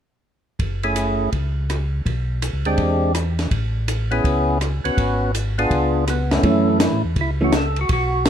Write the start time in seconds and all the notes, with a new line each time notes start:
0.59 F#1, kick, ride
0.83 A3 C#4 E4 G#4, ride
0.96 hi-hat pedal, ride
1.32 C#2, kick, ride
1.70 cross-stick, hi-hat pedal, ride
2.06 B1, kick, ride
2.42 hi-hat pedal, ride
2.53 C#2
2.65 D2 G#3 C4 D4 G4, ride
2.78 E2, kick, ride
3.15 cross-stick, hi-hat pedal, ride
3.39 snare, ride
3.51 A1, kick, ride
3.88 hi-hat pedal, ride
4.11 B3 C#4 E4 G#4, ride
4.24 C#2, kick, ride
4.61 cross-stick, hi-hat pedal, ride
4.84 C#2 B3 C#4 F#4 B4, ride
4.97 G#1, kick, ride
5.35 hi-hat pedal, ride
5.58 B3 D4 F4 G#4, ride
5.71 C#2, kick, ride
6.07 B3, cross-stick, hi-hat pedal, ride
6.31 F#2 A3 C#4 E4 A4, snare, ride
6.43 F#2 E3 A3 C#4, kick, ride
6.70 E4
6.80 snare, hi-hat pedal, ride
6.93 A2
7.05 E2
7.16 C#2, kick, ride
7.21 E4
7.41 E3 A3 C#4 F#4
7.52 snare, hi-hat pedal, ride
7.57 A4
7.76 ride
7.81 F#4
7.89 B1 F#4, kick, ride
8.25 snare, hi-hat pedal, ride